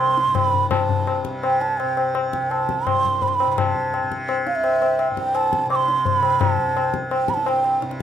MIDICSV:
0, 0, Header, 1, 4, 480
1, 0, Start_track
1, 0, Tempo, 357995
1, 956, Time_signature, 4, 2, 24, 8
1, 5750, Tempo, 352941
1, 10826, End_track
2, 0, Start_track
2, 0, Title_t, "Bansuri"
2, 0, Program_c, 0, 73
2, 0, Note_on_c, 0, 84, 110
2, 468, Note_on_c, 0, 83, 102
2, 488, Note_off_c, 0, 84, 0
2, 937, Note_off_c, 0, 83, 0
2, 945, Note_on_c, 0, 81, 89
2, 1623, Note_off_c, 0, 81, 0
2, 1913, Note_on_c, 0, 79, 79
2, 2159, Note_on_c, 0, 81, 80
2, 2179, Note_off_c, 0, 79, 0
2, 2381, Note_on_c, 0, 79, 85
2, 2401, Note_off_c, 0, 81, 0
2, 2871, Note_off_c, 0, 79, 0
2, 3124, Note_on_c, 0, 79, 74
2, 3356, Note_on_c, 0, 81, 79
2, 3376, Note_off_c, 0, 79, 0
2, 3837, Note_on_c, 0, 84, 92
2, 3857, Note_off_c, 0, 81, 0
2, 4323, Note_on_c, 0, 83, 89
2, 4343, Note_off_c, 0, 84, 0
2, 4400, Note_on_c, 0, 84, 75
2, 4420, Note_off_c, 0, 83, 0
2, 4486, Note_on_c, 0, 83, 94
2, 4506, Note_off_c, 0, 84, 0
2, 4718, Note_off_c, 0, 83, 0
2, 4718, Note_on_c, 0, 83, 55
2, 4805, Note_on_c, 0, 81, 77
2, 4825, Note_off_c, 0, 83, 0
2, 5516, Note_off_c, 0, 81, 0
2, 5993, Note_on_c, 0, 77, 79
2, 6114, Note_on_c, 0, 76, 84
2, 6134, Note_off_c, 0, 77, 0
2, 6837, Note_off_c, 0, 76, 0
2, 6969, Note_on_c, 0, 79, 85
2, 7203, Note_on_c, 0, 81, 86
2, 7224, Note_off_c, 0, 79, 0
2, 7667, Note_off_c, 0, 81, 0
2, 7675, Note_on_c, 0, 86, 94
2, 7743, Note_on_c, 0, 84, 102
2, 7757, Note_off_c, 0, 86, 0
2, 8163, Note_on_c, 0, 83, 95
2, 8184, Note_off_c, 0, 84, 0
2, 8620, Note_on_c, 0, 81, 91
2, 8641, Note_off_c, 0, 83, 0
2, 9348, Note_off_c, 0, 81, 0
2, 9611, Note_on_c, 0, 79, 86
2, 9837, Note_on_c, 0, 83, 80
2, 9858, Note_off_c, 0, 79, 0
2, 9901, Note_on_c, 0, 81, 87
2, 9915, Note_off_c, 0, 83, 0
2, 10091, Note_on_c, 0, 79, 85
2, 10112, Note_off_c, 0, 81, 0
2, 10560, Note_off_c, 0, 79, 0
2, 10826, End_track
3, 0, Start_track
3, 0, Title_t, "Tanpura"
3, 0, Program_c, 1, 104
3, 0, Note_on_c, 1, 36, 64
3, 0, Note_on_c, 1, 43, 61
3, 0, Note_on_c, 1, 48, 62
3, 356, Note_off_c, 1, 43, 0
3, 362, Note_on_c, 1, 43, 61
3, 953, Note_off_c, 1, 43, 0
3, 953, Note_on_c, 1, 43, 61
3, 1691, Note_off_c, 1, 48, 0
3, 1691, Note_on_c, 1, 48, 59
3, 2453, Note_off_c, 1, 48, 0
3, 2453, Note_on_c, 1, 48, 54
3, 3176, Note_off_c, 1, 36, 0
3, 3181, Note_on_c, 1, 36, 54
3, 3923, Note_off_c, 1, 43, 0
3, 3923, Note_on_c, 1, 43, 49
3, 4640, Note_off_c, 1, 48, 0
3, 4640, Note_on_c, 1, 48, 61
3, 5396, Note_off_c, 1, 48, 0
3, 5396, Note_on_c, 1, 48, 60
3, 6129, Note_off_c, 1, 36, 0
3, 6134, Note_on_c, 1, 36, 57
3, 6862, Note_off_c, 1, 43, 0
3, 6867, Note_on_c, 1, 43, 62
3, 7608, Note_off_c, 1, 48, 0
3, 7608, Note_on_c, 1, 48, 55
3, 8347, Note_off_c, 1, 48, 0
3, 8347, Note_on_c, 1, 48, 57
3, 9069, Note_off_c, 1, 36, 0
3, 9074, Note_on_c, 1, 36, 56
3, 9812, Note_off_c, 1, 43, 0
3, 9817, Note_on_c, 1, 43, 52
3, 10547, Note_off_c, 1, 48, 0
3, 10547, Note_on_c, 1, 48, 60
3, 10826, Note_off_c, 1, 36, 0
3, 10826, Note_off_c, 1, 43, 0
3, 10826, Note_off_c, 1, 48, 0
3, 10826, End_track
4, 0, Start_track
4, 0, Title_t, "Tabla"
4, 235, Note_on_c, 9, 62, 59
4, 369, Note_off_c, 9, 62, 0
4, 467, Note_on_c, 9, 60, 80
4, 467, Note_on_c, 9, 64, 72
4, 601, Note_off_c, 9, 60, 0
4, 601, Note_off_c, 9, 64, 0
4, 720, Note_on_c, 9, 64, 59
4, 854, Note_off_c, 9, 64, 0
4, 949, Note_on_c, 9, 60, 101
4, 949, Note_on_c, 9, 64, 87
4, 1083, Note_off_c, 9, 60, 0
4, 1083, Note_off_c, 9, 64, 0
4, 1197, Note_on_c, 9, 64, 66
4, 1331, Note_off_c, 9, 64, 0
4, 1439, Note_on_c, 9, 60, 71
4, 1573, Note_off_c, 9, 60, 0
4, 1673, Note_on_c, 9, 37, 57
4, 1807, Note_off_c, 9, 37, 0
4, 1923, Note_on_c, 9, 60, 67
4, 2057, Note_off_c, 9, 60, 0
4, 2164, Note_on_c, 9, 62, 55
4, 2298, Note_off_c, 9, 62, 0
4, 2412, Note_on_c, 9, 60, 70
4, 2546, Note_off_c, 9, 60, 0
4, 2645, Note_on_c, 9, 60, 57
4, 2779, Note_off_c, 9, 60, 0
4, 2881, Note_on_c, 9, 60, 77
4, 3015, Note_off_c, 9, 60, 0
4, 3128, Note_on_c, 9, 37, 55
4, 3262, Note_off_c, 9, 37, 0
4, 3369, Note_on_c, 9, 60, 74
4, 3503, Note_off_c, 9, 60, 0
4, 3606, Note_on_c, 9, 37, 53
4, 3740, Note_off_c, 9, 37, 0
4, 3844, Note_on_c, 9, 60, 70
4, 3844, Note_on_c, 9, 64, 64
4, 3978, Note_off_c, 9, 60, 0
4, 3978, Note_off_c, 9, 64, 0
4, 4086, Note_on_c, 9, 64, 48
4, 4220, Note_off_c, 9, 64, 0
4, 4313, Note_on_c, 9, 63, 75
4, 4313, Note_on_c, 9, 64, 64
4, 4447, Note_off_c, 9, 63, 0
4, 4447, Note_off_c, 9, 64, 0
4, 4561, Note_on_c, 9, 60, 57
4, 4695, Note_off_c, 9, 60, 0
4, 4800, Note_on_c, 9, 60, 104
4, 4800, Note_on_c, 9, 64, 89
4, 4934, Note_off_c, 9, 60, 0
4, 4934, Note_off_c, 9, 64, 0
4, 5029, Note_on_c, 9, 64, 66
4, 5163, Note_off_c, 9, 64, 0
4, 5281, Note_on_c, 9, 60, 72
4, 5415, Note_off_c, 9, 60, 0
4, 5519, Note_on_c, 9, 37, 56
4, 5653, Note_off_c, 9, 37, 0
4, 5749, Note_on_c, 9, 60, 73
4, 5885, Note_off_c, 9, 60, 0
4, 5992, Note_on_c, 9, 62, 57
4, 6128, Note_off_c, 9, 62, 0
4, 6226, Note_on_c, 9, 60, 73
4, 6362, Note_off_c, 9, 60, 0
4, 6471, Note_on_c, 9, 60, 61
4, 6607, Note_off_c, 9, 60, 0
4, 6706, Note_on_c, 9, 60, 79
4, 6842, Note_off_c, 9, 60, 0
4, 6952, Note_on_c, 9, 37, 58
4, 7088, Note_off_c, 9, 37, 0
4, 7189, Note_on_c, 9, 60, 69
4, 7325, Note_off_c, 9, 60, 0
4, 7436, Note_on_c, 9, 37, 57
4, 7572, Note_off_c, 9, 37, 0
4, 7674, Note_on_c, 9, 60, 67
4, 7810, Note_off_c, 9, 60, 0
4, 7918, Note_on_c, 9, 62, 52
4, 8054, Note_off_c, 9, 62, 0
4, 8151, Note_on_c, 9, 63, 68
4, 8151, Note_on_c, 9, 64, 63
4, 8287, Note_off_c, 9, 63, 0
4, 8287, Note_off_c, 9, 64, 0
4, 8386, Note_on_c, 9, 60, 57
4, 8522, Note_off_c, 9, 60, 0
4, 8633, Note_on_c, 9, 60, 103
4, 8633, Note_on_c, 9, 64, 96
4, 8769, Note_off_c, 9, 60, 0
4, 8769, Note_off_c, 9, 64, 0
4, 8879, Note_on_c, 9, 64, 66
4, 9015, Note_off_c, 9, 64, 0
4, 9120, Note_on_c, 9, 60, 70
4, 9256, Note_off_c, 9, 60, 0
4, 9352, Note_on_c, 9, 37, 58
4, 9488, Note_off_c, 9, 37, 0
4, 9591, Note_on_c, 9, 60, 74
4, 9727, Note_off_c, 9, 60, 0
4, 9823, Note_on_c, 9, 37, 59
4, 9942, Note_on_c, 9, 62, 55
4, 9959, Note_off_c, 9, 37, 0
4, 10068, Note_on_c, 9, 60, 72
4, 10078, Note_off_c, 9, 62, 0
4, 10204, Note_off_c, 9, 60, 0
4, 10313, Note_on_c, 9, 60, 63
4, 10449, Note_off_c, 9, 60, 0
4, 10558, Note_on_c, 9, 62, 80
4, 10677, Note_off_c, 9, 62, 0
4, 10677, Note_on_c, 9, 62, 61
4, 10813, Note_off_c, 9, 62, 0
4, 10826, End_track
0, 0, End_of_file